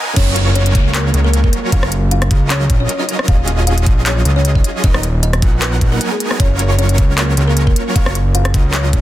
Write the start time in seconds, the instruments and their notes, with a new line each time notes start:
Already playing: supersaw synth F#3 B3 D#4 A#4 G#5, noise sweep
0.16 analog synth bass F#1, supersaw synth F#3 C#4 F4 A#4, kalimba C#4 C#5, kick, closed hi-hat, crash, downlifter
0.36 closed hi-hat
0.55 kalimba C#4 C#5, closed hi-hat
0.66 closed hi-hat
0.75 analog synth bass C#2, supersaw synth F#3 C#4 F4 A#4 C#5, kick, closed hi-hat
0.94 kalimba A#3 A#4, clap, closed hi-hat
1.14 analog synth bass C#2, closed hi-hat
1.24 kalimba A#3 A#4
1.34 closed hi-hat
1.44 kalimba A#3 A#4, kick
1.53 closed hi-hat
1.72 analog synth bass F#1, kalimba F4 F5, kick, closed hi-hat
1.83 cross-stick
1.92 closed hi-hat
2.11 kalimba F4 F5, closed hi-hat
2.22 cross-stick, closed hi-hat
2.31 analog synth bass C#2, supersaw synth F#3 C#4 F4 A#4 D#5, kick, closed hi-hat
2.50 kalimba C#4 C#5, clap, closed hi-hat
2.70 analog synth bass A#1, kick, closed hi-hat
2.80 kalimba C#4 C#5
2.89 closed hi-hat
3.00 kalimba D#4 D#5
3.09 closed hi-hat
3.19 cross-stick
3.28 analog synth bass D#1, supersaw synth F#3 C#4 F4 G#4 D#5, kalimba F4 F5, kick, closed hi-hat
3.48 closed hi-hat
3.67 kalimba F4 F5, closed hi-hat
3.78 closed hi-hat
3.86 analog synth bass A#1, supersaw synth F#3 C#4 F4 G#4 D#5, kick, closed hi-hat
4.06 kalimba C#4 C#5, clap, closed hi-hat
4.25 analog synth bass C#2, closed hi-hat
4.36 kalimba C#4 C#5
4.45 closed hi-hat
4.55 kalimba D#4 D#5, kick
4.64 closed hi-hat
4.84 analog synth bass D#1, supersaw synth F#3 B3 D#4 A#4 D#5, kalimba D#4 D#5, kick, closed hi-hat
4.94 cross-stick
5.03 closed hi-hat
5.23 kalimba D#4 D#5, closed hi-hat
5.33 cross-stick, closed hi-hat
5.42 analog synth bass A#1, supersaw synth F#3 B3 D#4 A#4 F#5, kick, closed hi-hat
5.62 kalimba B3 B4, clap, closed hi-hat
5.81 analog synth bass A#1, kick, closed hi-hat
5.92 supersaw synth F#3 B3 D#4 A#4 F#5, kalimba A#3 A#4
6.01 supersaw synth F#3 B3 D#4 A#4 G#5, closed hi-hat
6.11 kalimba G#3 G#4
6.20 closed hi-hat
6.31 cross-stick
6.40 analog synth bass F#1, supersaw synth F#3 C#4 F4 A#4 C#5, kalimba C#4 C#5, kick, closed hi-hat
6.59 closed hi-hat
6.78 kalimba C#4 C#5, closed hi-hat
6.89 closed hi-hat
6.98 analog synth bass C#2, supersaw synth C#4 A#4 C#5, kick, closed hi-hat
7.17 kalimba A#3 A#4, clap, closed hi-hat
7.37 analog synth bass C#2, closed hi-hat
7.48 kalimba A#3 A#4
7.57 closed hi-hat
7.67 kalimba A#3 A#4, kick
7.76 closed hi-hat
7.95 analog synth bass F#1, supersaw synth F#3 C#4 F4 A#4 C#5, kalimba F4 F5, kick, closed hi-hat
8.06 cross-stick
8.15 closed hi-hat
8.35 kalimba F4 F5, closed hi-hat
8.45 cross-stick, closed hi-hat
8.54 analog synth bass C#2, supersaw synth F#3 C#4 F4 A#4 D#5, kick, closed hi-hat
8.73 kalimba C#4 C#5, clap, closed hi-hat
8.93 analog synth bass A#1, kick, closed hi-hat